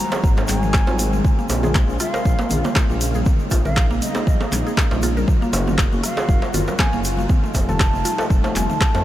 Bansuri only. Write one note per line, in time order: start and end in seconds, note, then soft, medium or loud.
0.00 0.32 A#5 loud
0.49 1.20 G#5 loud
2.01 2.51 F5 medium
3.66 3.85 F5 loud
4.02 4.41 D#5 loud
6.04 6.54 F5 loud
6.79 6.99 G#5 medium
7.68 8.39 A5 loud
8.55 9.04 A5 loud